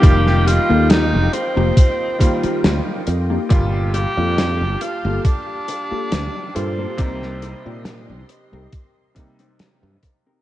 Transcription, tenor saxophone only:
X:1
M:4/4
L:1/8
Q:"Swing 16ths" 1/4=69
K:Gm
V:1 name="Tenor saxophone"
G F E C4 z | z G2 F D3 C- | C3 z4 z |]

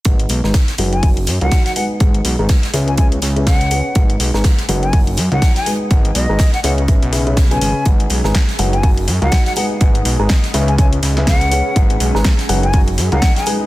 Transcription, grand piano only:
X:1
M:4/4
L:1/16
Q:"Swing 16ths" 1/4=123
K:G#m
V:1 name="Grand piano"
[G,DGBf]3 [G,DGBa] z2 [F,DGBf] z [F,DFAf] z2 [F,DFAf]3 [G,DGBg]2 | [G,DGBf]3 [G,DGBa] z2 [C,CGBe] z [C,CGBe] z2 [C,CGBe]3 [CGBf]2 | [G,DGBf]3 [G,DGBa] z2 [F,DGBf] z [F,DFAf] z2 [F,DFAf]3 [G,DGBg]2 | [G,DGBf]3 [G,DGBa] z2 [C,CGBe] z [C,CGBe] z [C,CGBe] [C,CGBe] z [C,CGBg]3 |
[G,DGBf]3 [G,DGBa] z2 [F,DGBf] z [F,DFAf] z2 [F,DFAf]3 [G,DGBg]2 | [G,DGBf]3 [G,DGBa] z2 [C,CGBe] z [C,CGBe] z2 [C,CGBe]3 [CGBf]2 | [G,DGBf]3 [G,DGBa] z2 [F,DGBf] z [F,DFAf] z2 [F,DFAf]3 [G,DGBg]2 |]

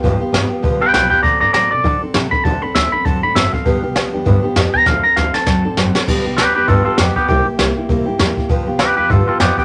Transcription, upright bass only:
X:1
M:4/4
L:1/8
Q:"Swing" 1/4=198
K:Gmix
V:1 name="Upright bass" clef=bass
G,,, z G,,, z B,,, D,, B,,, z | D,, G,, A,, B,, D, z C, z | D,, z D,, z ^F,, A,, ^F,,, z | G,,, C,, D,, E,, G,, z F,, z |
D,, z D,, z ^F,, A,, ^F,,, z | G,,, C,, D,, E,, G,, z F,, z | C,, z C,, z E,, G,, E,, z | G,,, C,, D,, E,, G,, z F,, z |]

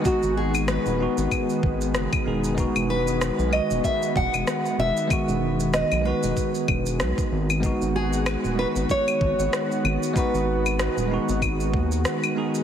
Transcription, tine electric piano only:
X:1
M:4/4
L:1/8
Q:"Swing 16ths" 1/4=95
K:G#phr
V:1 name="Tine electric piano"
[G,B,DF]3 [G,B,DF]4 [G,B,DG] | [G,B,DF]3 [D,G,B,F]4- [D,G,B,F] | [D,G,B,F]3 [G,B,DF]4- [G,B,DF] | [G,B,DF]3 [G,B,DF]4- [G,B,DF] |
[G,B,DF]3 [G,B,DF]4 [G,B,DG] |]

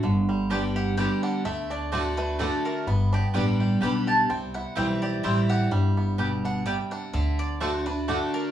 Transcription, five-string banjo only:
X:1
M:3/4
L:1/8
Q:"Swing" 1/4=127
K:G
V:1 name="Five-string banjo"
D, G, D G G, D | A, D D A, D D | B, D G, G G, G | C E G, G G, G |
G, B, G, D G, D | D,2 D D A, D |]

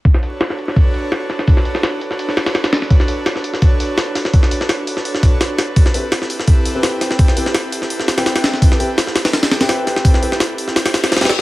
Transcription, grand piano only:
X:1
M:4/4
L:1/16
Q:1/4=168
K:Bphr
V:1 name="Grand piano"
z16 | z16 | z16 | z16 |
z2 [CEGB] z8 [CEGB]4- [CEGB]- | [CEGB]2 [CEGB] z8 [CEGB]4- [CEGB]- | [CEGB]2 [CEGB] z8 [CEGB]4- [CEGB]- | [CEGB]2 [CEGB] z8 z2 [CEGB] z2 |]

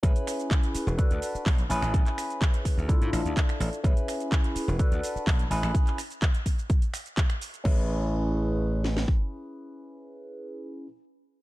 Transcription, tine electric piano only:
X:1
M:4/4
L:1/8
Q:1/4=126
K:A
V:1 name="Tine electric piano"
[CEGB]4 [DFAB]3 [CEGB]- | [CEGB]4 [DE=FA]4 | [CEGB]4 [DFAB]3 [CEGB]- | [CEGB] z6 z |
[CEGB]8- | [CEGB]8 |]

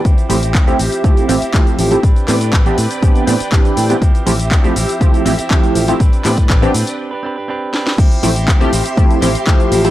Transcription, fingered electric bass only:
X:1
M:4/4
L:1/8
Q:1/4=121
K:Ddor
V:1 name="Fingered electric bass" clef=bass
D,, A,,, D,, A,,, D,, A,,, D,, A,,, | A,,, A,, A,,, A,, A,,, A,, A,,, A,, | D,, A,,, D,, A,,, D,, A,,, D,, A,,, | A,,, A,, A,,, A,, z4 |
D,, A,,, D,, A,,, D,, A,,, D,, A,,, |]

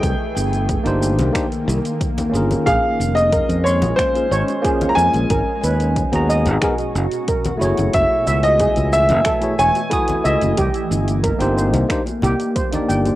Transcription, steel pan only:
X:1
M:4/4
L:1/16
Q:1/4=91
K:Cphr
V:1 name="Steel pan"
z16 | A2 z2 B z c'2 z2 d z A2 z2 | B z _c2 z2 e z A2 z2 B z d2 | z2 _f z A2 z2 =A z d2 z2 f z |
G2 z2 B z c2 z2 G2 c2 g2 |]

